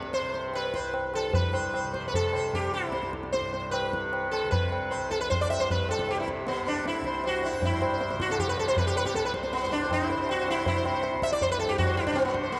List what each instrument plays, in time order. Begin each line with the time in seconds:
Already playing: tanpura C2 G2 C3
0.03 tabla te
0.13 sitar C5, tabla te
0.22 tanpura C3
0.34 sitar C5, tabla te
0.54 sitar B4, tabla na
0.74 tanpura C2, sitar C5, tabla ke
0.94 tabla na
1.14 sitar A4, tabla na
1.30 tanpura G2, tabla tin, tabla ge
1.34 sitar B4
1.53 sitar C5, tabla na
1.74 sitar C5, tabla na
1.83 tanpura C3
1.93 sitar C5, tabla ke
2.08 sitar B4
2.14 sitar A4, tabla tin, tabla ge
2.33 tanpura C3, sitar C5, tabla na
2.53 sitar G4, tabla tin, tabla ge
2.73 sitar E4, tabla na
2.88 tanpura C2
2.92 sitar C5, tabla te
3.03 tabla te
3.13 tabla ke
3.23 tabla te
3.32 sitar C5, tabla te
3.41 tanpura G2
3.53 sitar C5, tabla te
3.71 sitar B4, tabla na
3.92 tanpura C3, tabla ke
4.13 tabla na
4.31 sitar A4, tabla na
4.44 tanpura C3
4.51 sitar B4, tabla tin, tabla ge
4.72 tabla na
4.90 sitar C5, tabla na
4.96 tanpura C2
5.11 sitar A4, tabla ke
5.21 sitar B4
5.30 sitar C5, tabla tin, tabla ge
5.41 sitar D5
5.48 tanpura G2, sitar E5, tabla na
5.60 sitar C5
5.70 sitar B4, tabla tin, tabla ge
5.89 sitar A4, tabla na
5.99 tanpura C3, tabla ke
6.09 sitar G4, tabla na
6.20 sitar E4
6.28 tabla ke
6.47 sitar B3 C5, tabla te
6.51 tanpura C3
6.66 sitar D4 C5, tabla te
6.85 sitar E4, tabla te
6.95 tabla te
7.01 tanpura C2, tabla ke
7.06 sitar C5
7.14 tabla te
7.24 sitar F#4 C5, tabla na
7.43 sitar E4 C5, tabla na
7.52 tanpura G2
7.61 tanpura G2, tabla tin, tabla ge
7.65 sitar E4
7.72 sitar C5
7.82 sitar C5, tabla na
7.93 sitar C5
8.00 sitar C5, tabla te
8.10 tanpura C3, sitar C5, tabla te
8.20 sitar F#4, tabla ke
8.30 sitar A4, tabla te
8.39 sitar G4, tabla tin, tabla ge
8.49 sitar B4
8.58 sitar A4, tabla na
8.63 tanpura C3
8.68 sitar C5
8.77 sitar B4, tabla tin, tabla ge
8.87 sitar G4
8.96 sitar B4, tabla na
9.06 sitar G4, tabla ke
9.14 tanpura C2, sitar A4, tabla te
9.24 sitar B4, tabla te
9.34 sitar C5, tabla ke
9.43 sitar C5, tabla te
9.53 sitar B3, tabla te
9.63 tanpura G2, sitar C5
9.71 sitar D4, tabla te
9.83 sitar C5
9.91 sitar E4, tabla na, tabla ge
10.02 sitar C5
10.10 sitar C5, tabla te
10.15 tanpura C3
10.21 sitar C5
10.29 sitar F#4, tabla na
10.40 sitar C5
10.48 sitar E4, tabla na
10.59 sitar C5
10.66 tanpura C3, sitar E4, tabla tin, tabla ge
10.76 sitar C5
10.86 sitar C5, tabla na
10.94 sitar C5
11.01 sitar C5, tabla na
11.14 tanpura C2
11.22 sitar E5, tabla ke
11.33 sitar D5
11.41 sitar C5, tabla tin, tabla ge
11.51 sitar B4
11.59 sitar A4, tabla na
11.64 tanpura G2
11.69 sitar G4
11.78 sitar F#4, tabla tin, tabla ge
11.86 sitar C5
11.97 sitar E4, tabla na
12.07 sitar D4, tabla ke
12.12 tanpura C3, sitar C4 D4, tabla na
12.25 sitar B3
12.34 sitar C5, tabla ke
12.43 sitar C5
12.52 sitar B3, tabla te